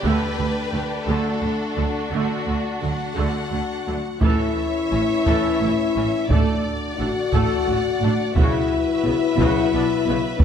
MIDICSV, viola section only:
0, 0, Header, 1, 2, 480
1, 0, Start_track
1, 0, Tempo, 697674
1, 22, Time_signature, 6, 3, 24, 8
1, 3863, Tempo, 683371
1, 7255, End_track
2, 0, Start_track
2, 0, Title_t, "Viola section"
2, 0, Program_c, 0, 48
2, 21, Note_on_c, 0, 57, 46
2, 23, Note_on_c, 0, 50, 43
2, 243, Note_off_c, 0, 57, 0
2, 244, Note_off_c, 0, 50, 0
2, 266, Note_on_c, 0, 50, 36
2, 271, Note_off_c, 0, 50, 0
2, 271, Note_on_c, 0, 50, 30
2, 326, Note_off_c, 0, 50, 0
2, 498, Note_on_c, 0, 50, 31
2, 501, Note_on_c, 0, 57, 30
2, 553, Note_off_c, 0, 50, 0
2, 556, Note_off_c, 0, 57, 0
2, 737, Note_on_c, 0, 50, 43
2, 745, Note_on_c, 0, 57, 43
2, 961, Note_off_c, 0, 50, 0
2, 965, Note_off_c, 0, 57, 0
2, 981, Note_on_c, 0, 50, 29
2, 988, Note_off_c, 0, 50, 0
2, 988, Note_on_c, 0, 50, 27
2, 1043, Note_off_c, 0, 50, 0
2, 1215, Note_on_c, 0, 54, 30
2, 1216, Note_on_c, 0, 50, 37
2, 1270, Note_off_c, 0, 54, 0
2, 1271, Note_off_c, 0, 50, 0
2, 1452, Note_on_c, 0, 57, 33
2, 1453, Note_on_c, 0, 50, 34
2, 1683, Note_off_c, 0, 50, 0
2, 1683, Note_off_c, 0, 57, 0
2, 1695, Note_on_c, 0, 50, 23
2, 1698, Note_off_c, 0, 50, 0
2, 1698, Note_on_c, 0, 50, 29
2, 1753, Note_off_c, 0, 50, 0
2, 1936, Note_on_c, 0, 50, 23
2, 1938, Note_on_c, 0, 54, 26
2, 1991, Note_off_c, 0, 50, 0
2, 1993, Note_off_c, 0, 54, 0
2, 2170, Note_on_c, 0, 50, 40
2, 2171, Note_on_c, 0, 57, 37
2, 2403, Note_off_c, 0, 50, 0
2, 2404, Note_off_c, 0, 57, 0
2, 2418, Note_on_c, 0, 50, 24
2, 2419, Note_off_c, 0, 50, 0
2, 2419, Note_on_c, 0, 50, 25
2, 2475, Note_off_c, 0, 50, 0
2, 2664, Note_on_c, 0, 54, 29
2, 2668, Note_on_c, 0, 50, 28
2, 2719, Note_off_c, 0, 54, 0
2, 2723, Note_off_c, 0, 50, 0
2, 2904, Note_on_c, 0, 52, 48
2, 2905, Note_on_c, 0, 69, 52
2, 3129, Note_off_c, 0, 52, 0
2, 3129, Note_off_c, 0, 69, 0
2, 3380, Note_on_c, 0, 52, 32
2, 3380, Note_on_c, 0, 61, 35
2, 3435, Note_off_c, 0, 52, 0
2, 3435, Note_off_c, 0, 61, 0
2, 3620, Note_on_c, 0, 52, 55
2, 3620, Note_on_c, 0, 69, 51
2, 3844, Note_off_c, 0, 52, 0
2, 3845, Note_off_c, 0, 69, 0
2, 3866, Note_on_c, 0, 52, 35
2, 3871, Note_on_c, 0, 64, 33
2, 3922, Note_off_c, 0, 52, 0
2, 3927, Note_off_c, 0, 64, 0
2, 4106, Note_on_c, 0, 61, 45
2, 4107, Note_on_c, 0, 52, 42
2, 4162, Note_off_c, 0, 61, 0
2, 4164, Note_off_c, 0, 52, 0
2, 4345, Note_on_c, 0, 69, 51
2, 4349, Note_on_c, 0, 57, 48
2, 4571, Note_off_c, 0, 69, 0
2, 4573, Note_off_c, 0, 57, 0
2, 4830, Note_on_c, 0, 57, 39
2, 4835, Note_on_c, 0, 62, 39
2, 4886, Note_off_c, 0, 57, 0
2, 4891, Note_off_c, 0, 62, 0
2, 5069, Note_on_c, 0, 69, 61
2, 5071, Note_on_c, 0, 57, 52
2, 5293, Note_off_c, 0, 69, 0
2, 5294, Note_off_c, 0, 57, 0
2, 5323, Note_on_c, 0, 57, 38
2, 5324, Note_on_c, 0, 66, 36
2, 5379, Note_off_c, 0, 57, 0
2, 5380, Note_off_c, 0, 66, 0
2, 5559, Note_on_c, 0, 57, 49
2, 5562, Note_on_c, 0, 62, 50
2, 5615, Note_off_c, 0, 57, 0
2, 5618, Note_off_c, 0, 62, 0
2, 5808, Note_on_c, 0, 66, 53
2, 5811, Note_on_c, 0, 49, 57
2, 6023, Note_off_c, 0, 66, 0
2, 6024, Note_off_c, 0, 49, 0
2, 6281, Note_on_c, 0, 49, 42
2, 6282, Note_on_c, 0, 59, 43
2, 6337, Note_off_c, 0, 49, 0
2, 6338, Note_off_c, 0, 59, 0
2, 6523, Note_on_c, 0, 66, 56
2, 6525, Note_on_c, 0, 49, 63
2, 6739, Note_off_c, 0, 66, 0
2, 6740, Note_off_c, 0, 49, 0
2, 6762, Note_on_c, 0, 59, 48
2, 6764, Note_on_c, 0, 62, 49
2, 6818, Note_off_c, 0, 59, 0
2, 6821, Note_off_c, 0, 62, 0
2, 7003, Note_on_c, 0, 49, 57
2, 7007, Note_on_c, 0, 59, 50
2, 7059, Note_off_c, 0, 49, 0
2, 7063, Note_off_c, 0, 59, 0
2, 7255, End_track
0, 0, End_of_file